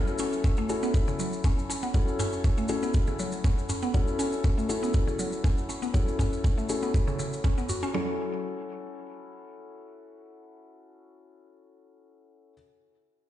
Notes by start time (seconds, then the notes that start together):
Already playing: C#4 E4 F#4 A4
0.07 maracas
0.18 C#4, maracas
0.33 maracas
0.44 C#4, kick, maracas
0.57 A3, maracas
0.69 C#4 E4 F#4 A4, maracas
0.83 B3, maracas
0.94 kick, maracas
1.08 C#3, maracas
1.19 F#3, maracas
1.33 maracas
1.44 C#4, kick, maracas
1.58 maracas
1.70 C#4, maracas
1.83 B3, maracas
1.94 F#3 C#4 E4 F#4 A4, kick, maracas
2.08 maracas
2.19 C#4, mid tom, maracas
2.33 maracas
2.44 C#4, kick, maracas
2.57 A3, maracas
2.68 C#4 E4 F#4 A4, maracas
2.83 B3, maracas
2.94 kick, maracas
3.07 C#3, maracas
3.19 F#3, maracas
3.32 maracas
3.44 C#4, kick, maracas
3.58 maracas
3.69 C#4, mid tom, maracas
3.82 B3, maracas
3.94 F#3 C#4 E4 F#4 A4, kick, maracas
4.08 maracas
4.19 C#4, maracas
4.32 maracas
4.44 C#4, kick, maracas
4.58 A3, maracas
4.69 C#4 E4 F#4 A4, maracas
4.83 B3, maracas
4.94 kick, maracas
5.07 C#3, maracas
5.19 F#3, maracas
5.32 maracas
5.44 C#4, kick, maracas
5.58 maracas
5.69 C#4, maracas
5.82 B3, maracas
5.94 F#3 C#4 E4 F#4 A4, kick, maracas
6.08 maracas
6.19 C#4, kick, mid tom, maracas
6.33 maracas
6.44 C#4, kick, maracas
6.58 A3, maracas
6.69 C#4 E4 F#4 A4, maracas
6.82 B3, maracas
6.94 kick, maracas
7.07 C#3, maracas
7.19 C#3, maracas
7.33 maracas
7.44 C#4, kick, maracas
7.58 B3, maracas
7.69 F#4, mid tom, maracas
7.83 C#4, maracas
7.94 F#3 C#4 E4 F#4 A4